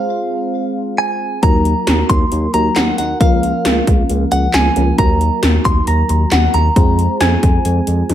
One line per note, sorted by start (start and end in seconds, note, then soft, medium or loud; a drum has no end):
0.00 1.39 G#3 medium
0.00 1.39 C4 medium
0.00 1.39 F4 medium
0.00 1.39 G#4 medium
0.00 1.39 C5 medium
0.00 1.02 F5 loud
0.98 1.43 G#5 medium
1.43 1.74 D#2 loud
1.43 2.52 F#3 medium
1.43 2.52 A#3 medium
1.43 2.52 D#4 medium
1.43 2.52 F#4 medium
1.43 2.52 A#4 medium
1.43 2.06 A#5 loud
1.43 kick loud
1.43 closed hi-hat medium
1.65 closed hi-hat medium
1.87 2.03 D#2 loud
1.87 snare loud
1.87 closed hi-hat medium
2.10 2.25 D#2 loud
2.10 2.54 C6 loud
2.10 kick medium
2.10 closed hi-hat medium
2.32 2.47 D#2 loud
2.32 closed hi-hat medium
2.54 2.69 D#2 loud
2.54 3.21 F#3 soft
2.54 3.19 A#3 soft
2.54 3.21 D#4 soft
2.54 3.21 F#4 soft
2.54 3.19 A#4 medium
2.54 2.77 A#5 loud
2.54 closed hi-hat medium
2.76 2.92 D#2 loud
2.76 2.97 F#5 medium
2.76 snare loud
2.76 clap medium
2.76 closed hi-hat medium
2.98 3.14 D#2 loud
2.98 3.20 F#5 medium
2.98 closed hi-hat medium
3.21 3.52 C#2 loud
3.21 4.73 F3 medium
3.21 4.73 A#3 medium
3.21 4.73 C#4 medium
3.21 4.73 F4 medium
3.21 4.73 A#4 medium
3.21 4.31 F5 loud
3.21 kick loud
3.21 closed hi-hat medium
3.43 closed hi-hat medium
3.65 3.81 C#2 loud
3.65 snare loud
3.65 closed hi-hat medium
3.87 4.03 C#2 loud
3.87 kick medium
3.87 closed hi-hat medium
4.09 4.25 C#2 loud
4.09 closed hi-hat medium
4.32 4.47 C#2 loud
4.32 4.55 F#5 medium
4.32 closed hi-hat medium
4.54 4.70 C#2 loud
4.54 4.98 G#5 medium
4.54 snare loud
4.54 clap medium
4.54 closed hi-hat medium
4.76 4.92 C#2 loud
4.76 4.98 F3 medium
4.76 4.97 A#3 soft
4.76 4.98 C#4 soft
4.76 4.98 F4 soft
4.76 4.97 A#4 medium
4.76 closed hi-hat medium
4.98 5.30 D#2 loud
4.98 6.73 F#3 medium
4.98 6.73 A#3 medium
4.98 6.73 D#4 medium
4.98 6.73 F#4 medium
4.98 6.73 A#4 medium
4.98 5.40 A#5 loud
4.98 kick loud
4.98 closed hi-hat medium
5.21 closed hi-hat medium
5.43 5.58 D#2 loud
5.43 snare loud
5.43 closed hi-hat medium
5.65 5.81 D#2 loud
5.65 5.87 C6 loud
5.65 kick medium
5.65 closed hi-hat medium
5.87 6.03 D#2 loud
5.87 6.29 A#5 loud
5.87 closed hi-hat medium
6.09 6.25 D#2 loud
6.09 closed hi-hat medium
6.32 6.47 D#2 loud
6.32 6.55 F#5 loud
6.32 snare loud
6.32 clap medium
6.32 closed hi-hat medium
6.54 6.69 D#2 loud
6.54 7.17 A#5 loud
6.54 closed hi-hat medium
6.76 7.07 F2 loud
6.76 8.14 G#3 medium
6.76 8.14 C4 medium
6.76 8.14 F4 medium
6.76 8.14 G#4 medium
6.76 8.14 C5 medium
6.76 kick loud
6.76 closed hi-hat medium
6.99 closed hi-hat medium
7.21 7.36 F2 loud
7.21 8.14 G#5 medium
7.21 snare loud
7.21 closed hi-hat medium
7.43 7.58 F2 loud
7.43 kick medium
7.43 closed hi-hat medium
7.65 7.81 F2 loud
7.65 closed hi-hat medium
7.87 8.03 F2 loud
7.87 closed hi-hat medium
8.09 8.14 F2 loud
8.09 closed hi-hat medium
8.09 high tom medium